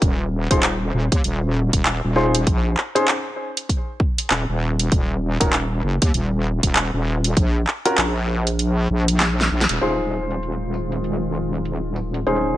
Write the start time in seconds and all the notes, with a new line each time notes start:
0.02 D#1, kick, closed hi-hat
0.51 D#1 D#4 F4 G#4 C5, kick, closed hi-hat
0.63 clap, closed hi-hat
0.94 D#1
1.12 D#2, kick, closed hi-hat
1.24 D#1, closed hi-hat
1.73 D#1, kick, closed hi-hat
1.86 clap, closed hi-hat
2.04 D#1
2.16 D#4 F4 G#4 C5
2.35 closed hi-hat
2.47 A#1, kick, closed hi-hat
2.77 clap
2.95 C#4 D#4 G#4 C5, closed hi-hat
3.08 clap, closed hi-hat
3.57 closed hi-hat
3.69 kick, closed hi-hat
4.00 kick
4.18 closed hi-hat
4.30 D#1, clap, closed hi-hat
4.49 D#1
4.79 closed hi-hat
4.92 D#1, kick, closed hi-hat
5.40 D#1 C#4 D#4 F#4 A#4, kick, closed hi-hat
5.53 clap, closed hi-hat
5.84 F#1
6.02 D#2, kick, closed hi-hat
6.14 D#1, closed hi-hat
6.63 D#1, kick, closed hi-hat
6.76 clap, closed hi-hat
6.94 D#1
7.24 closed hi-hat
7.37 A#1, kick, closed hi-hat
7.67 clap
7.85 C#4 F4 F#4 A#4, closed hi-hat
7.98 A#1, clap, closed hi-hat
8.47 closed hi-hat
8.59 closed hi-hat
8.90 A#1
9.08 closed hi-hat
9.20 snare, clap, closed hi-hat
9.41 snare
9.51 A#1
9.61 snare
9.69 D#1, closed hi-hat
9.81 D#1 D#3 G#3 D#4 F4 G#4 C5
10.31 closed hi-hat
10.43 closed hi-hat
10.74 tambourine
10.92 closed hi-hat
11.04 closed hi-hat
11.65 closed hi-hat
11.96 tambourine
12.14 closed hi-hat
12.26 D#1 C#3 G#3 C#4 D#4 G#4 C5, closed hi-hat